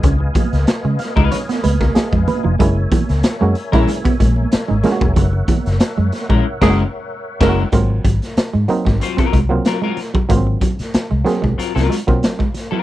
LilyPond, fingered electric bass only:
\new Staff \with { instrumentName = "Fingered electric bass" } { \clef bass \time 4/4 \key aes \mixolydian \tempo 4 = 94 des,8 r16 des,16 r16 des16 r16 des,16 r8 des,8 r16 f,16 r16 f,,16 | ges,,8 r16 des,16 r16 ges,16 r16 bes,,16 r8 bes,,8 r16 aes,,16 r16 fes,,16 | ges,,8 r16 ges,,16 r16 ges,16 r16 bes,,16 r16 ges,,8 r8. ges,,8 | aes,,8 aes,,16 r8 aes,16 r16 aes,,16 r8 c,8 r4 |
aes,,8 r8. c,16 r16 ces,16 r16 c,16 r16 ces,16 r4 | }